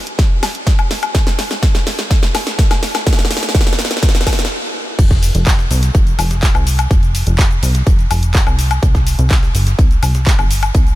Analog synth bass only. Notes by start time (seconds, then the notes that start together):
4.99 F1
5.35 F1
5.71 C2
5.95 F1
6.19 F1
6.55 C2
6.91 F1
7.27 F1
7.63 C2
7.87 F1
8.11 F1
8.47 C2
8.83 C2
9.19 C2
9.55 G1
9.79 C2
10.03 C2
10.39 G1
10.75 C2